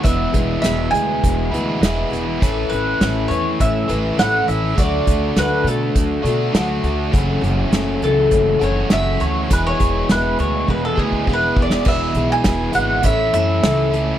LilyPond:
<<
  \new Staff \with { instrumentName = "Mandolin" } { \time 4/4 \key e \mixolydian \tempo 4 = 102 e''4 e''8 gis''4. r4 | r8 b'4 cis''8 e''4 fis''8 e''8 | d''4 b'8 a'4. r4 | r4. a'4 cis''8 e''8 cis''8 |
b'16 cis''8. b'8 cis''8 b'16 a'16 gis'8 b'8 d''8 | e''8. gis''8. fis''8 e''8 e''4. | }
  \new Staff \with { instrumentName = "Twelve-string acoustic guitar" } { \time 4/4 \key e \mixolydian <e b e' gis'>8 <b e' gis'>8 <e b e' gis'>8 <b e' gis'>8 <e b e' gis'>8 <b e' gis'>8 <e b e' gis'>8 <b e' gis'>8 | <a cis' e' b'>8 <cis' e' b'>8 <a cis' e' b'>8 <cis' e' b'>8 <a cis' e' b'>8 <cis' e' b'>8 <a cis' e' b'>8 <cis' e' b'>8 | <d fis a fis' a'>8 <a fis' a'>8 <d fis a fis' a'>8 <a fis' a'>8 <fis a fis' a'>8 <a fis' a'>8 <d fis a fis' a'>8 <a fis' a'>8 | <fis, cis e a cis' a'>8 <e a cis' a'>8 <fis, cis e a cis' a'>8 <e a cis' a'>8 <e a cis' a'>8 <e a cis' a'>8 <fis, cis e a cis' a'>8 <e a cis' a'>8 |
<e b e' gis'>8 <b e' gis'>8 <e b e' gis'>8 <b e' gis'>8 <e b e' gis'>8 <b e' gis'>8 <e b e' gis'>8 <b e' gis'>8 | <e b e' gis'>8 <b e' gis'>8 <e b e' gis'>8 <b e' gis'>8 <a cis' e' a'>8 <a cis' e' a'>8 <a, e a cis' e' a'>8 <a cis' e' a'>8 | }
  \new Staff \with { instrumentName = "Overdriven electric guitar" } { \clef bass \time 4/4 \key e \mixolydian <e, b, e gis b e'>2~ <e, b, e gis b e'>8 <e, b, e gis b e'>8 <e, b, e gis b e'>4 | <a, e a cis' e'>2~ <a, e a cis' e'>8 <a, e a cis' e'>8 <a, e a cis' e'>4 | <d a d' fis'>2~ <d a d' fis'>8 <d a d' fis'>8 <d a d' fis'>4 | <fis, cis fis a cis' fis'>2~ <fis, cis fis a cis' fis'>8 <fis, cis fis a cis' fis'>8 <fis, cis fis a cis' fis'>4 |
<e, b, e gis b gis'>2~ <e, b, e gis b gis'>8 <e, b, e gis b gis'>8 <e, b, e gis b gis'>4 | <e, b, e gis b e'>4. <e, b, e gis b e'>8 <a, e a cis' e'>4. <a, e a cis' e'>8 | }
  \new Staff \with { instrumentName = "Upright bass" } { \clef bass \time 4/4 \key e \mixolydian e,,8 e,,8 e,,8 d,8 e,,8 d,8 e,,8 e,,8 | a,,8 a,,8 a,,8 e,8 a,,8 a,,8 a,,8 a,,8 | d,8 d,8 d,8 b,8 d,8 b,8 d,8 d,8 | fis,,8 fis,,8 fis,,8 cis,8 fis,,8 fis,,8 fis,,8 d,8 |
e,,8 e,,8 e,,8 d,8 e,,8 d,8 e,,8 e,,8 | e,,8 b,,8 e,,8 gis,,8 a,,8 fis,8 cis,4 | }
  \new DrumStaff \with { instrumentName = "Drums" } \drummode { \time 4/4 <hh bd>8 <hh bd>8 <hh sn>8 hh8 <hh bd>8 hh8 <hh sn>8 hh8 | <hh bd>8 hh8 <hh sn>8 hh8 <hh bd>8 hh8 <hh sn>8 hh8 | <hh bd>8 <hh bd>8 <hh sn>8 hh8 <hh bd>8 hh8 <hh sn>8 hh8 | <hh bd>8 hh8 <hh sn>8 hh8 <hh bd>8 hh8 <hh sn>8 hh8 |
<hh bd>8 <hh bd>8 <hh sn>8 hh8 bd8 bd16 bd16 bd8 bd16 sn16 | <cymc bd>8 hh8 <hh bd sn>8 hh8 <hh bd>8 hh8 <hh sn>8 hh8 | }
>>